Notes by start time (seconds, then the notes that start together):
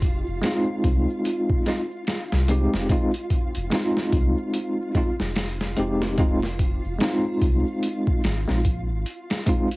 Already playing: F1 F4
0.02 kick, closed hi-hat, shaker
0.27 F1, shaker
0.41 G#3 C4 D#4, snare, closed hi-hat, shaker
0.47 F4
0.84 C2, kick, closed hi-hat, shaker
1.10 shaker
1.25 closed hi-hat, shaker
1.50 kick
1.66 G#3 C4 D#4 F4, snare, closed hi-hat, shaker
1.91 shaker
2.07 snare, closed hi-hat, shaker
2.32 C2, snare
2.48 G#3 C4 D#4 G4, closed hi-hat, shaker
2.73 F1, snare, shaker
2.89 G#3 C4 D#4 F4, kick, closed hi-hat, shaker
3.14 closed hi-hat
3.30 kick, closed hi-hat, shaker
3.55 F1, closed hi-hat, shaker
3.70 G#3 C4 D#4, snare, closed hi-hat, shaker
3.75 F4
3.97 snare
4.13 C2, kick, closed hi-hat, shaker
4.37 shaker
4.54 closed hi-hat, shaker
4.95 G#3 C4 D#4 F4, kick, closed hi-hat, shaker
5.20 F1, snare, shaker
5.36 snare, open hi-hat, shaker
5.61 snare
5.76 F1 G#3 C4 D#4 G4, closed hi-hat, shaker
6.02 snare, shaker
6.18 G#3 C4 D#4 F4, kick, closed hi-hat, shaker
6.42 snare, triangle
6.59 kick, closed hi-hat, shaker
6.84 F1, shaker
6.99 G#3 C4 D#4, snare, closed hi-hat, shaker
7.04 F4
7.25 triangle
7.41 C2, kick, closed hi-hat, shaker
7.66 shaker
7.83 closed hi-hat, shaker
8.07 kick
8.24 G#1, snare, closed hi-hat, shaker
8.48 A#1 G#3 C4 D#4 F4, snare, shaker
8.65 kick, closed hi-hat, shaker
8.90 G#1
9.06 closed hi-hat, shaker
9.30 snare, open hi-hat, shaker
9.46 G#3 C4 D#4 F4, kick, closed hi-hat, shaker
9.71 closed hi-hat